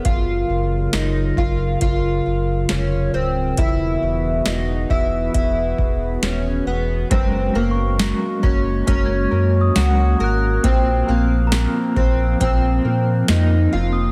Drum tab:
HH |x-x-x-x-|x-x-x-x-|x-x-x-x-|x-x-x-x-|
TB |--------|--------|--x---x-|--x---x-|
SD |--o---o-|--o---o-|--o---o-|--o---o-|
BD |o--oo---|o--ooo--|o--oo---|o--oo---|